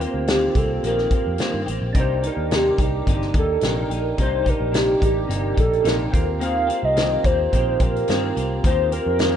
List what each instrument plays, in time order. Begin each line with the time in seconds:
Already playing: tonewheel organ A#3 C4 F4 G4
0.00 clean electric guitar A#3 C4 G4, soft synth lead A#4, closed hi-hat
0.14 picked electric bass D2
0.27 clean electric guitar D#3 A#3 C4 G4, soft synth lead G4, snare, closed hi-hat
0.55 picked electric bass C2, clean electric guitar C4 G4, soft synth lead A4, kick, closed hi-hat
0.59 clean electric guitar A#3
0.83 picked electric bass A#1, clean electric guitar D#3 A#3 C4 G4, soft synth lead A#4, closed hi-hat
0.98 snare
1.11 clean electric guitar C4 G4, muted picked electric bass stroke, kick, closed hi-hat
1.15 clean electric guitar A#3
1.27 picked electric bass F2
1.38 clean electric guitar D#3 A#3 C4 G4, snare, closed hi-hat
1.54 picked electric bass G2
1.66 picked electric bass A1, clean electric guitar A#3 C4 G4, closed hi-hat
1.82 picked electric bass A#1
1.93 picked electric bass C2, clean electric guitar C3 A#3, tonewheel organ D4 D#4 G4, kick, closed hi-hat
1.97 clean electric guitar D#4 G4, tonewheel organ A#4, soft synth lead C5
2.23 clean electric guitar A#3 D#4 G4, soft synth lead A#4, closed hi-hat
2.37 picked electric bass D#2
2.51 clean electric guitar C3 A#3 D#4 G4, snare, closed hi-hat
2.55 soft synth lead G4
2.78 picked electric bass C2, clean electric guitar A#3 D#4 G4, soft synth lead G4, kick, closed hi-hat
3.06 picked electric bass G1, clean electric guitar C3 A#3 D#4 G4, kick, closed hi-hat
3.11 soft synth lead G4
3.22 snare
3.34 picked electric bass D#2, clean electric guitar A#3 D#4 G4, soft synth lead A4, kick, closed hi-hat
3.61 picked electric bass A#1, clean electric guitar C3 A#3 D#4, snare, closed hi-hat
3.65 clean electric guitar G4, soft synth lead A#4
3.90 picked electric bass A#1, clean electric guitar A#3 D#4 G4, closed hi-hat
4.18 picked electric bass C2, clean electric guitar C3 A#3 D#4 G4, soft synth lead C5, kick, closed hi-hat
4.44 clean electric guitar A#3 D#4 G4, kick, closed hi-hat
4.49 soft synth lead A#4
4.60 picked electric bass A#1
4.71 clean electric guitar C3 A#3 D#4 G4, snare, closed hi-hat
4.77 soft synth lead G4
5.00 picked electric bass A1, clean electric guitar A#3 D#4 G4, kick, closed hi-hat
5.05 soft synth lead G4
5.27 picked electric bass G1, clean electric guitar C3 A#3 D#4 G4, closed hi-hat
5.32 soft synth lead G4
5.54 picked electric bass A#1, clean electric guitar A#3 D#4 G4, kick, closed hi-hat
5.59 soft synth lead A4
5.73 closed hi-hat
5.83 picked electric bass A#1, clean electric guitar C3 A#3 D#4 G4, soft synth lead A#4, closed hi-hat
5.87 snare
6.10 picked electric bass D#2, clean electric guitar A#3 C4 G4, tonewheel organ C4 F4, kick
6.15 tonewheel organ G4 A#4, closed hi-hat
6.39 clean electric guitar D#3 A#3 C4 G4, soft synth lead F5, closed hi-hat
6.67 clean electric guitar A#3 C4 G4, closed hi-hat
6.83 picked electric bass C2, soft synth lead D#5
6.95 clean electric guitar D#3 A#3 C4 G4, snare, closed hi-hat
7.24 picked electric bass D#2, clean electric guitar A#3 C4 G4, soft synth lead C5, kick, closed hi-hat
7.52 picked electric bass A#1, clean electric guitar D#3 A#3 C4 G4, kick, closed hi-hat
7.80 picked electric bass A#1, clean electric guitar C4 G4, soft synth lead A#4, kick, closed hi-hat
7.84 clean electric guitar A#3
7.96 closed hi-hat
8.08 picked electric bass G2, clean electric guitar D#3 A#3 C4 G4, snare, closed hi-hat
8.36 picked electric bass C2, clean electric guitar A#3 C4 G4, closed hi-hat
8.64 picked electric bass D#2, clean electric guitar D#3 A#3 C4 G4, soft synth lead C5, kick, closed hi-hat
8.92 clean electric guitar A#3 C4 G4, soft synth lead A#4, closed hi-hat
9.06 picked electric bass F2
9.18 clean electric guitar D#3 A#3 C4 G4, snare, closed hi-hat